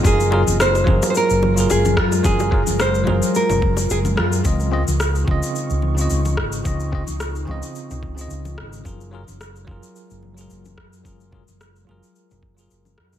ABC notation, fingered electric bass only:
X:1
M:4/4
L:1/16
Q:"Swing 16ths" 1/4=109
K:F#mix
V:1 name="Fingered electric bass" clef=bass
F,,,3 F,,,3 F,,, z2 F,,,3 F,,,2 F,,2 | F,,,3 F,,,3 F,,, z2 F,,,3 F,,,2 F,,2 | C,,3 C,,3 C,, z2 C,,3 C,,2 G,,,2 | C,,3 C,,3 C,, z2 C,,3 C,,2 G,,,2 |
F,,,3 F,,,3 F,,, z2 F,,,3 F,,,2 F,,2 | F,,,3 F,,,3 F,,, z2 F,,,3 F,,,2 F,,2 |]